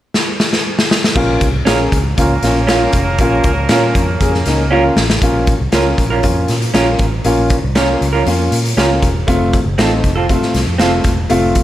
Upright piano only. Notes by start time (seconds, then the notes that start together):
1.15 A#3 C#4 F4
1.66 A#3 C#4 G#4
2.18 A#3 C#4 F4
2.42 A#3 C#4 F4
2.69 A#3 C#4 F4
3.20 A#3 C#4 F4
3.70 A#3 C#4 F4
4.21 A#3 C#4 G#4
4.46 A#3 C#4 D#4
4.71 A#3 C#4 F4
5.22 A#3 C#4 F4
5.72 A#3 C#4 F4
6.23 A#3 C#4 F4
6.74 A#3 C#4 F4
7.24 A#3 C#4 F4
7.76 A#3 C#4 F4
8.27 A#3 C#4 F4
8.77 A#3 C#4 F4
9.27 A3 C4 F4
9.78 A3 C4 D#4
10.29 A3 C4 F4
10.80 A3 C4 F4
11.29 A3 C4 F4